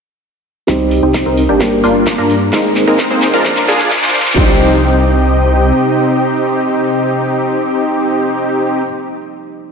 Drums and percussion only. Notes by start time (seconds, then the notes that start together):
0.68 kick, clap, closed hi-hat
0.80 closed hi-hat
0.91 open hi-hat
1.03 closed hi-hat
1.14 kick, clap, closed hi-hat
1.26 closed hi-hat
1.37 open hi-hat
1.49 closed hi-hat
1.60 kick, clap, closed hi-hat
1.72 closed hi-hat
1.84 open hi-hat
1.95 closed hi-hat
2.07 kick, clap, closed hi-hat
2.18 closed hi-hat
2.30 open hi-hat
2.41 closed hi-hat
2.53 kick, clap, closed hi-hat
2.64 closed hi-hat
2.76 clap, open hi-hat
2.87 closed hi-hat
2.99 kick, clap, closed hi-hat
3.10 closed hi-hat
3.22 clap, open hi-hat
3.34 closed hi-hat
3.45 kick, clap, closed hi-hat
3.57 clap, closed hi-hat
3.68 clap, open hi-hat
3.80 clap, closed hi-hat
3.91 kick, clap, closed hi-hat
3.97 clap
4.03 clap, closed hi-hat
4.09 clap
4.14 clap, open hi-hat
4.20 clap
4.26 clap, open hi-hat
4.32 clap
4.37 kick, crash